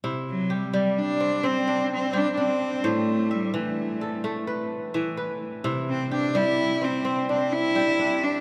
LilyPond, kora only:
<<
  \new Staff \with { instrumentName = "Kora" } { \time 12/8 \key c \major \tempo 4. = 86 e'4 g'4. c'4 d'4 g'8 d'4 | c''4 e''4. a'4 b'4 e''8 b'4 | e'4 g'4. c'4 d'4 g'8 d'4 | }
  \new Staff \with { instrumentName = "Kora" } { \clef bass \time 12/8 \key c \major c4 r8 g4 r8 c'4 r8 g4 r8 | a,4 r8 e4 r8 a4 r8 e4 r8 | c4 r8 g4 r8 c'4 r8 g4 r8 | }
>>